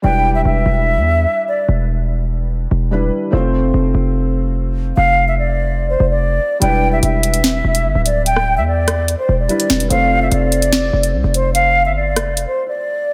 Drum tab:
HH |----------------|----------------|----------------|----------------|
SD |----------------|----------------|----------------|----------------|

HH |x---x-xxx--x--x-|x-----x-x---xxxx|x---x-xxx--x--x-|x-----x-x-------|
SD |--------o-------|-r----r-------o-|--------o-------|------r---------|